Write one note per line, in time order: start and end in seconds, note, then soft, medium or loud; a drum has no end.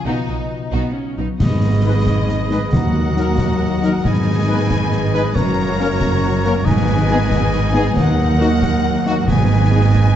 0.05 0.13 B1 medium
0.05 0.13 B2 medium
0.05 1.42 B2 medium
0.05 0.27 B3 medium
0.05 0.72 D#4 medium
0.05 0.27 D#4 soft
0.05 0.27 D#4 medium
0.05 0.27 F#4 medium
0.05 0.72 D#5 medium
0.16 1.27 B3 soft
0.28 0.36 B1 soft
0.28 0.36 B2 soft
0.28 0.37 B3 soft
0.28 1.05 D#4 soft
0.28 0.36 D#4 soft
0.28 0.37 D#4 soft
0.28 0.36 F#4 soft
0.39 0.61 D#5 soft
0.50 0.83 F#4 soft
0.62 0.94 D#5 medium
0.72 0.80 B1 medium
0.72 0.81 B2 medium
0.72 0.95 B3 medium
0.72 0.94 D#4 medium
0.72 0.94 F#4 medium
0.72 4.63 D#6 medium
0.84 1.42 F#4 soft
0.95 1.18 C#4 medium
0.95 2.06 D#5 soft
1.06 1.72 D#4 soft
1.17 1.25 B1 soft
1.17 1.27 B2 soft
1.17 1.42 F#3 soft
1.17 1.27 B3 soft
1.17 1.26 D#4 soft
1.17 1.26 D#4 medium
1.28 2.74 B3 soft
1.40 2.69 G#1 medium
1.40 2.03 G#2 medium
1.40 2.75 G#2 medium
1.40 2.69 G#2 medium
1.40 2.69 G#4 medium
1.40 2.76 G#4 medium
1.40 2.69 B4 soft
1.40 4.00 D#5 medium
1.40 2.69 D#5 medium
1.40 2.69 B5 medium
1.40 concert bass drum medium
1.40 snare medium
1.40 crash soft
1.51 2.72 D#3 soft
1.63 2.61 G#3 soft
1.73 2.50 D#4 soft
1.84 1.92 G#3 medium
1.84 1.92 D#4 medium
1.84 2.38 B4 medium
1.84 1.93 B4 medium
1.96 2.75 G#4 medium
2.07 2.28 D#5 medium
2.07 concert bass drum medium
2.07 snare medium
2.18 2.75 B5 soft
2.29 3.27 D#5 medium
2.29 snare soft
2.40 2.75 B4 soft
2.49 2.58 G#3 medium
2.49 2.58 D#4 medium
2.49 2.59 B4 medium
2.49 snare soft
2.62 2.75 G#3 soft
2.72 4.04 D#2 medium
2.72 3.35 D#3 medium
2.72 4.06 D#3 medium
2.72 4.02 F#4 medium
2.72 4.05 F#4 medium
2.72 4.02 A#4 medium
2.72 4.02 F#5 medium
2.72 4.02 A#5 medium
2.72 concert bass drum medium
2.72 snare medium
2.84 4.06 F#3 medium
2.95 3.92 D#4 soft
3.06 3.82 A#4 soft
3.14 3.23 F#3 medium
3.14 3.23 D#4 medium
3.14 3.71 F#4 medium
3.14 3.25 A#4 medium
3.14 snare soft
3.28 4.69 D#5 medium
3.38 3.60 A#5 medium
3.38 concert bass drum medium
3.38 snare medium
3.50 4.06 F#5 soft
3.61 4.06 A#5 medium
3.72 4.07 F#4 medium
3.82 3.90 F#3 medium
3.82 3.91 D#4 medium
3.82 3.91 A#4 medium
3.82 snare soft
3.93 4.36 D#4 medium
4.04 5.33 G#1 medium
4.04 5.33 G#2 medium
4.04 5.37 G#2 medium
4.04 5.33 D#4 medium
4.04 5.37 G#4 medium
4.04 5.36 B4 medium
4.04 5.37 D#5 medium
4.04 5.36 G#5 medium
4.04 5.33 B5 medium
4.04 concert bass drum medium
4.04 snare medium
4.16 5.38 D#3 medium
4.27 5.23 G#3 medium
4.37 5.12 D#4 medium
4.47 4.55 G#3 medium
4.47 4.55 D#4 medium
4.47 5.01 B4 medium
4.47 4.56 B4 medium
4.59 5.37 G#4 medium
4.70 4.90 D#5 medium
4.70 concert bass drum medium
4.70 snare medium
4.81 5.37 B5 medium
4.92 5.37 D#5 medium
4.92 snare soft
5.03 5.37 B4 medium
5.13 5.22 G#3 medium
5.13 5.37 D#4 medium
5.13 5.22 D#4 medium
5.13 5.21 B4 medium
5.13 snare soft
5.24 5.37 G#3 medium
5.34 6.63 F#1 medium
5.34 6.68 F#2 medium
5.34 6.64 F#2 medium
5.34 6.64 F#4 medium
5.34 6.66 A#4 medium
5.34 6.67 C#5 medium
5.34 6.63 A#5 medium
5.34 6.64 A#5 medium
5.34 concert bass drum medium
5.34 snare medium
5.45 6.68 C#3 medium
5.57 6.54 A#3 medium
5.68 6.44 F#4 medium
5.79 5.87 A#3 medium
5.79 5.87 C#4 medium
5.79 5.87 A#4 medium
5.79 6.33 C#5 medium
5.79 snare soft
6.01 6.22 F#5 medium
6.01 concert bass drum medium
6.01 snare medium
6.12 6.69 C#6 medium
6.23 6.68 F#5 medium
6.34 6.68 C#5 medium
6.45 6.53 A#3 medium
6.45 6.54 C#4 medium
6.45 6.68 F#4 medium
6.45 6.52 A#4 medium
6.45 snare medium
6.56 6.68 A#3 medium
6.65 7.94 G#1 medium
6.65 7.27 G#2 medium
6.65 7.94 G#2 medium
6.65 7.99 G#2 medium
6.65 9.24 D#4 medium
6.65 7.97 B4 medium
6.65 7.67 B4 medium
6.65 9.00 D#5 medium
6.65 7.94 G#5 medium
6.65 7.74 G#5 medium
6.65 concert bass drum medium
6.65 snare medium
6.65 crash soft
6.78 7.96 D#3 medium
6.89 7.85 G#3 medium
6.99 7.74 D#4 medium
7.10 7.18 B3 medium
7.10 7.18 D#4 medium
7.10 7.18 G#4 medium
7.10 7.63 B4 medium
7.21 7.99 G#4 medium
7.32 7.53 D#5 medium
7.32 concert bass drum medium
7.32 snare medium
7.43 7.99 B5 medium
7.52 8.50 D#5 medium
7.52 snare soft
7.64 7.99 B4 medium
7.72 7.81 B3 medium
7.72 7.82 D#4 medium
7.72 7.83 G#4 medium
7.72 snare medium
7.87 7.99 G#3 medium
7.96 9.25 D#2 medium
7.96 9.30 D#3 medium
7.96 9.28 A#4 medium
7.96 9.25 A#4 medium
7.96 9.25 F#5 medium
7.96 9.28 F#5 loud
7.96 concert bass drum medium
7.96 snare medium
8.08 9.30 F#3 medium
8.19 9.15 D#4 medium
8.29 9.05 A#4 medium
8.40 8.49 A#3 medium
8.40 8.49 D#4 medium
8.40 8.48 F#4 medium
8.40 8.94 F#4 medium
8.40 snare soft
8.51 9.94 D#5 medium
8.62 8.83 A#5 medium
8.62 concert bass drum medium
8.62 snare medium
8.74 9.30 F#5 medium
8.85 9.30 A#5 medium
8.96 9.30 F#4 medium
9.06 9.14 A#3 medium
9.06 9.14 D#4 medium
9.06 9.14 F#4 medium
9.06 snare medium
9.17 9.61 D#4 medium
9.26 10.16 G#1 medium
9.26 10.16 G#2 medium
9.26 9.90 G#2 loud
9.26 10.16 G#2 medium
9.26 10.16 D#4 medium
9.26 10.16 B4 medium
9.26 10.16 D#5 medium
9.26 10.16 G#5 medium
9.26 concert bass drum medium
9.26 snare medium
9.40 10.16 D#3 medium
9.50 10.16 G#3 medium
9.62 10.16 D#4 medium
9.72 9.80 B3 medium
9.72 9.80 D#4 medium
9.72 9.80 G#4 medium
9.72 10.16 B4 medium
9.83 10.16 G#4 medium
9.95 10.16 D#5 medium
9.95 concert bass drum medium
9.95 snare medium
10.06 10.16 B5 medium